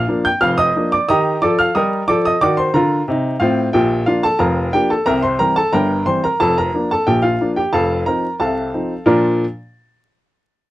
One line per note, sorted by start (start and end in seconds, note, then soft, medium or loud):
0.00 0.23 F5 medium
0.00 0.18 F6 medium
0.08 0.26 F3 soft
0.08 0.27 A#3 soft
0.08 0.27 D4 soft
0.25 0.41 G5 medium
0.25 0.41 G6 medium
0.41 0.69 F1 medium
0.41 0.69 F2 medium
0.41 0.57 F5 medium
0.41 0.57 F6 medium
0.58 0.89 D#5 medium
0.58 0.89 D#6 loud
0.76 0.94 F3 soft
0.76 0.94 A#3 soft
0.76 0.94 D4 soft
0.92 1.08 D5 medium
0.92 1.08 D6 medium
1.09 1.35 D#3 medium
1.09 1.36 G4 medium
1.09 1.40 D#5 medium
1.09 1.40 A#5 medium
1.09 1.35 D#6 medium
1.42 1.68 F3 medium
1.42 1.69 A4 medium
1.42 1.57 D5 medium
1.42 1.58 D6 medium
1.59 1.74 F5 medium
1.59 1.75 F6 medium
1.75 2.01 G3 medium
1.75 2.02 A#4 medium
1.75 2.06 D#5 medium
1.75 2.06 A#5 medium
1.75 2.01 D#6 medium
2.08 2.34 F3 medium
2.08 2.35 A4 medium
2.08 2.24 D5 medium
2.08 2.24 D6 loud
2.25 2.41 D#5 medium
2.25 2.41 D#6 medium
2.41 2.67 D#3 medium
2.41 2.69 F#4 medium
2.41 2.57 D5 medium
2.41 2.57 D6 loud
2.57 2.74 C5 medium
2.57 2.74 C6 medium
2.74 3.00 D3 medium
2.74 3.02 F4 medium
2.74 3.05 A#4 medium
2.74 3.00 A#5 medium
3.08 3.34 C3 medium
3.08 3.35 D#4 medium
3.40 3.67 A2 medium
3.40 3.68 C4 medium
3.40 3.72 F4 medium
3.40 3.66 F5 medium
3.73 4.02 A#1 medium
3.73 4.02 A#2 medium
3.73 4.05 G4 medium
3.73 4.05 G5 medium
4.06 4.25 F3 soft
4.06 4.25 A#3 soft
4.06 4.25 D4 medium
4.06 4.23 F4 medium
4.06 4.23 F5 medium
4.23 4.39 A4 medium
4.23 4.40 A5 medium
4.39 4.68 F1 medium
4.39 4.68 F2 medium
4.39 4.71 A#4 medium
4.39 4.71 F5 medium
4.39 4.71 A#5 medium
4.73 4.92 F3 soft
4.73 4.92 A#3 soft
4.73 4.92 D4 medium
4.73 4.89 G4 medium
4.73 4.90 G5 medium
4.90 5.06 A4 medium
4.90 5.06 A5 medium
5.06 5.35 C2 medium
5.06 5.35 C3 medium
5.06 5.22 A#4 medium
5.06 5.23 A#5 loud
5.23 5.39 C5 medium
5.23 5.39 C6 medium
5.39 5.58 E3 soft
5.39 5.58 G3 soft
5.39 5.58 C4 soft
5.39 5.55 A#4 medium
5.39 5.56 A#5 medium
5.56 5.72 A4 medium
5.56 5.73 A5 medium
5.73 6.01 G1 medium
5.73 6.01 G2 medium
5.73 6.04 A#4 medium
5.73 6.04 G5 medium
5.73 6.04 A#5 medium
6.06 6.24 E3 soft
6.06 6.25 G3 soft
6.06 6.25 C4 soft
6.06 6.22 C5 medium
6.06 6.23 C6 medium
6.24 6.39 A#4 medium
6.24 6.40 A#5 medium
6.40 6.68 F1 medium
6.40 6.68 F2 medium
6.40 6.56 A4 medium
6.40 6.56 A5 medium
6.58 6.89 A#4 medium
6.58 6.89 A#5 medium
6.74 6.92 F3 soft
6.74 6.92 A#3 soft
6.74 6.93 D4 soft
6.91 7.06 A4 medium
6.91 7.07 A5 medium
7.07 7.35 A#1 medium
7.07 7.35 A#2 medium
7.07 7.23 G4 medium
7.07 7.23 G5 medium
7.22 7.54 F4 medium
7.22 7.49 F5 medium
7.41 7.59 F3 soft
7.41 7.59 A#3 soft
7.41 7.59 D4 soft
7.56 7.72 G4 medium
7.56 7.73 G5 medium
7.73 8.01 F1 medium
7.73 8.01 F2 medium
7.73 8.04 A4 medium
7.73 8.05 F5 medium
7.73 7.99 A5 medium
8.06 8.25 F3 soft
8.06 8.25 C4 soft
8.06 8.25 D#4 soft
8.06 8.38 A#4 medium
8.06 8.33 A#5 medium
8.40 8.69 C2 medium
8.40 8.69 C3 medium
8.40 9.04 A4 medium
8.40 9.04 F5 soft
8.40 9.04 A5 medium
8.74 8.92 F3 soft
8.74 8.92 C4 soft
8.74 8.93 D#4 soft
9.06 9.44 A#2 medium
9.06 9.44 F3 medium
9.06 9.44 D4 medium
9.06 9.44 F4 medium
9.06 9.44 A#4 medium
9.06 9.44 D5 medium
9.06 9.44 A#5 medium